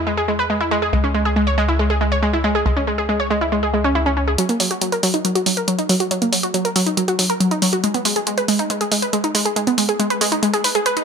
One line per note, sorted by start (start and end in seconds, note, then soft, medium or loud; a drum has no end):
0.00 0.91 E2 medium
0.07 0.12 G#3 medium
0.17 0.23 G#4 medium
0.28 0.31 G#3 medium
0.39 0.42 B4 medium
0.50 0.58 G#3 medium
0.61 0.64 E4 medium
0.71 0.77 G#3 loud
0.82 0.87 G#4 medium
0.93 2.64 C#2 medium
0.93 0.96 G#3 medium
1.04 1.07 C#4 medium
1.14 1.22 G#3 medium
1.25 1.28 G#4 medium
1.36 1.44 G#3 medium
1.47 1.50 C#5 medium
1.58 1.63 G#3 loud
1.68 1.72 E4 medium
1.79 1.84 G#3 medium
1.90 1.95 G#4 medium
2.01 2.04 G#3 medium
2.12 2.15 C#5 medium
2.23 2.30 G#3 medium
2.33 2.36 E4 medium
2.44 2.49 G#3 medium
2.55 2.60 G#4 medium
2.66 4.36 C#2 medium
2.66 2.69 G#3 medium
2.77 2.80 C#4 medium
2.87 2.95 G#3 medium
2.98 3.01 G#4 medium
3.09 3.17 G#3 medium
3.20 3.23 C#5 medium
3.30 3.36 G#3 medium
3.41 3.44 E4 medium
3.52 3.57 G#3 medium
3.63 3.68 G#4 medium
3.74 3.81 G#3 medium
3.84 3.87 C#4 loud
3.95 4.00 E4 medium
4.06 4.11 C#4 loud
4.17 4.22 C#4 medium
4.28 4.31 G#4 medium
4.38 4.41 F#3 medium
4.38 closed hi-hat medium
4.49 4.52 A#3 medium
4.49 closed hi-hat medium
4.60 4.68 F#3 medium
4.60 open hi-hat loud
4.71 4.74 F#4 medium
4.71 closed hi-hat medium
4.81 4.89 F#3 medium
4.81 closed hi-hat medium
4.92 4.95 A#4 medium
4.92 closed hi-hat soft
5.03 5.08 F#3 loud
5.03 open hi-hat loud
5.14 5.17 D#4 medium
5.14 closed hi-hat medium
5.25 5.30 F#3 medium
5.25 closed hi-hat medium
5.35 5.41 F#4 medium
5.35 closed hi-hat medium
5.46 5.49 F#3 medium
5.46 open hi-hat loud
5.57 5.60 A#4 medium
5.57 closed hi-hat soft
5.68 5.75 F#3 medium
5.68 closed hi-hat medium
5.79 5.82 D#4 medium
5.79 closed hi-hat soft
5.89 5.95 F#3 medium
5.89 open hi-hat loud
6.00 6.05 F#4 medium
6.00 closed hi-hat medium
6.11 6.14 F#3 medium
6.11 closed hi-hat medium
6.22 6.25 A#3 medium
6.22 closed hi-hat medium
6.32 6.40 F#3 medium
6.32 open hi-hat loud
6.43 6.46 F#4 medium
6.43 closed hi-hat medium
6.54 6.62 F#3 medium
6.54 closed hi-hat medium
6.65 6.68 A#4 medium
6.65 closed hi-hat soft
6.76 6.81 F#3 loud
6.76 open hi-hat loud
6.86 6.90 D#4 medium
6.86 closed hi-hat medium
6.97 7.02 F#3 medium
6.97 closed hi-hat medium
7.08 7.13 F#4 medium
7.08 closed hi-hat medium
7.19 7.22 F#3 medium
7.19 open hi-hat loud
7.30 7.33 A#4 medium
7.30 closed hi-hat soft
7.40 7.48 F#3 medium
7.40 closed hi-hat medium
7.51 7.54 D#4 medium
7.51 closed hi-hat soft
7.62 7.67 F#3 medium
7.62 open hi-hat loud
7.73 7.78 F#4 medium
7.73 closed hi-hat soft
7.84 7.87 G#3 medium
7.84 closed hi-hat medium
7.94 7.97 B3 medium
7.94 closed hi-hat medium
8.05 8.13 G#3 medium
8.05 open hi-hat loud
8.16 8.19 G#4 medium
8.16 closed hi-hat soft
8.27 8.35 G#3 medium
8.27 closed hi-hat medium
8.38 8.41 B4 medium
8.38 closed hi-hat soft
8.48 8.54 G#3 loud
8.48 open hi-hat loud
8.59 8.62 D#4 medium
8.59 closed hi-hat medium
8.70 8.75 G#3 medium
8.70 closed hi-hat medium
8.81 8.86 G#4 medium
8.81 closed hi-hat medium
8.92 8.95 G#3 medium
8.92 open hi-hat loud
9.02 9.05 B4 medium
9.02 closed hi-hat soft
9.13 9.21 G#3 medium
9.13 closed hi-hat medium
9.24 9.27 D#4 medium
9.24 closed hi-hat medium
9.35 9.40 G#3 loud
9.35 open hi-hat loud
9.45 9.51 G#4 medium
9.45 closed hi-hat soft
9.56 9.59 G#3 medium
9.56 closed hi-hat medium
9.67 9.70 B3 medium
9.67 closed hi-hat soft
9.78 9.86 G#3 medium
9.78 open hi-hat loud
9.89 9.92 G#4 medium
9.89 closed hi-hat soft
9.99 10.07 G#3 medium
9.99 closed hi-hat medium
10.10 10.13 B4 medium
10.10 closed hi-hat soft
10.21 10.26 G#3 loud
10.21 open hi-hat loud
10.32 10.35 D#4 medium
10.32 closed hi-hat soft
10.43 10.48 G#3 medium
10.43 closed hi-hat medium
10.53 10.59 G#4 medium
10.53 closed hi-hat medium
10.64 10.67 B4 medium
10.64 open hi-hat loud
10.75 10.80 G#4 loud
10.75 closed hi-hat soft
10.86 10.94 B4 loud
10.86 closed hi-hat medium
10.97 11.02 D#4 medium
10.97 closed hi-hat soft